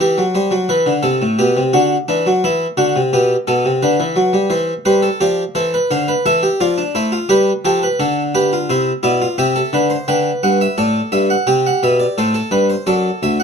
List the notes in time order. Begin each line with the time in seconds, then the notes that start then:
0.00 E3 G4
0.18 F#3
0.35 G3 C5
0.51 F#3
0.69 E3 B4
0.86 D3
1.03 C3 A4
1.22 A2
1.39 B2 G4
1.57 C3
1.73 D3 F#4
2.08 E3 D4
2.26 F#3
2.44 E3 E4
2.77 D3 F#4
2.96 C3
3.13 B2 G4
3.47 B2 A4
3.65 C3
3.82 D3 B4
4.00 E3
4.16 F#3
4.33 G3
4.50 E3 C5
4.85 G3 B4 C5
5.03 A4
5.20 F3 G4 D5
5.55 E3 A4 C5
5.74 B4
5.91 D3 C5 F5
6.08 B4
6.26 E3 A4 E5
6.43 G4
6.60 F3 F4 D5
6.78 D4
6.95 A3 E4 C5
7.12 F4
7.29 G3 G4 B4
7.65 F3 G4 A4
7.83 B4
8.00 D3 A4
8.35 G4 B4
8.53 F4
8.70 C3 E4 C5
9.03 B2 E4 D5
9.22 F4
9.38 C3 G4 E5
9.56 A4
9.73 D3 B4
9.90 C5
10.08 D3 B4 G5
10.43 G2 F#5
10.61 E5
10.78 A2 A4 D5
11.12 G2 E5
11.30 F#5
11.47 C3 G4 G5
11.66 F#5
11.83 B2 E5
11.99 D5
12.18 A2 A4 C5
12.34 A4
12.51 G2 B4
12.70 C5
12.87 F#2 A4 D5
13.23 D2 E5
13.40 F#5